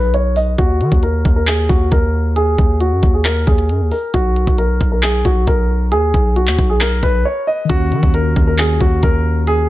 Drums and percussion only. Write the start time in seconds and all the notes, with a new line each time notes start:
0.14 closed hi-hat
0.36 open hi-hat
0.58 kick, closed hi-hat
0.81 closed hi-hat
0.92 kick
1.03 closed hi-hat
1.25 kick
1.47 clap, closed hi-hat
1.69 kick, closed hi-hat
1.92 kick, closed hi-hat
2.36 closed hi-hat
2.58 kick
2.81 closed hi-hat
3.03 kick
3.25 clap, closed hi-hat
3.47 kick, closed hi-hat
3.58 closed hi-hat
3.69 closed hi-hat
3.92 open hi-hat
4.14 kick, closed hi-hat
4.36 closed hi-hat
4.47 kick
4.58 closed hi-hat
4.81 kick
5.03 clap, closed hi-hat
5.25 kick, closed hi-hat
5.47 kick, closed hi-hat
5.92 closed hi-hat
6.14 kick
6.36 closed hi-hat
6.47 clap
6.59 kick
6.81 clap, closed hi-hat
7.03 kick, closed hi-hat
7.70 kick, closed hi-hat
7.92 closed hi-hat
8.03 kick
8.14 closed hi-hat
8.36 kick
8.58 clap, closed hi-hat
8.81 kick, closed hi-hat
9.03 kick, closed hi-hat
9.47 closed hi-hat